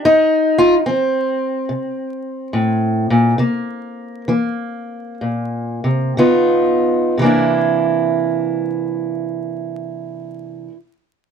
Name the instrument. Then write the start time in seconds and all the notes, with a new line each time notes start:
steel-string acoustic guitar
0.05 F2 D#4
0.58 F4
0.86 F3 C4
1.69 C3
2.53 A2
3.10 A#2
3.38 C3 A#3
4.28 E3 A#3
5.21 A#2
5.84 C3
6.17 C#3 B3 D#4 F4
7.17 C3 E3
7.22 A#3 D4
7.26 E4